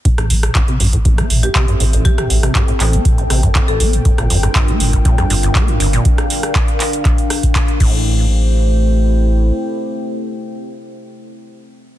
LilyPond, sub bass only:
\new Staff \with { instrumentName = "Sub bass" } { \clef bass \time 4/4 \key a \phrygian \tempo 4 = 120 r16 a,,16 a,,16 r8. a,,16 r8. a,,16 r8. a,,16 r16 | r16 a,,16 a,,16 r8. a,,16 r8. a,,16 r8. a,,16 r16 | r16 g,,16 g,,16 r8. g,,16 r8. g,,16 r8. g,,16 r16 | r2. r8 a,,8~ |
a,,2. r4 | r1 | }